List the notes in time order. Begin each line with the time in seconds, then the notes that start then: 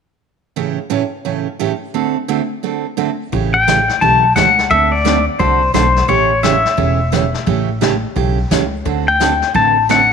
0.56 A2 C#3 E3 A3 C#4 G4
0.90 A2 C#3 E3 A3 C#4 G4
1.25 A2 C#3 E3 A3 C#4 G4
1.59 A2 C#3 E3 A3 C#4 G4
1.94 D3 A3 C4 F#4 A4
2.28 D3 A3 C4 F#4 A4
2.63 D3 A3 C4 F#4 A4
2.97 D3 A3 C4 F#4 A4
3.32 A1 C#3 E3 A3 C#4 G4, brush sweep, kick
3.54 G5
3.67 C#3 E3 A3 C#4 G4, snare, hi-hat pedal
3.89 snare
4.01 B1 C#3 E3 A3 C#4 G4 A5, brush sweep, kick
4.36 C#2 C#3 E3 A3 C#4 G4 F#5, snare, hi-hat pedal
4.59 snare
4.70 D2 D3 A3 C4 F#4 A4 E5, brush sweep, kick
4.92 D5
5.05 D3 A3 C4 F#4 A4, snare, hi-hat pedal
5.39 C2 D3 A3 C4 F#4 A4 C5, brush sweep, kick
5.74 B1 D3 A3 C4 F#4 A4 C5, snare, hi-hat pedal
5.96 snare
6.08 A1 C#3 E3 A3 C#4 G4 C#5, brush sweep, kick
6.43 C#3 E3 A3 C#4 G4 E5, snare, hi-hat pedal
6.65 snare
6.77 E1 C#3 E3 A3 C#4 G4, brush sweep, kick
7.12 C#3 E3 A3 C#4 G4, snare, hi-hat pedal
7.34 snare
7.46 A1 C#3 E3 A3 C#4 G4, brush sweep, kick
7.81 C#3 E3 A3 C#4 G4, snare, hi-hat pedal
8.16 B1 C#3 E3 A3 C#4 G4, brush sweep, kick
8.51 C#2 C#3 E3 A3 C#4 G4, snare, hi-hat pedal
8.85 D2 D3 A3 C4 F#4 A4, brush sweep, kick
9.08 G5
9.20 D3 A3 C4 F#4 A4, snare, hi-hat pedal
9.42 snare
9.54 A1 D3 A3 C4 F#4 A4 A5, brush sweep, kick
9.89 D3 A3 C4 F#4 A4 F#5, snare, hi-hat pedal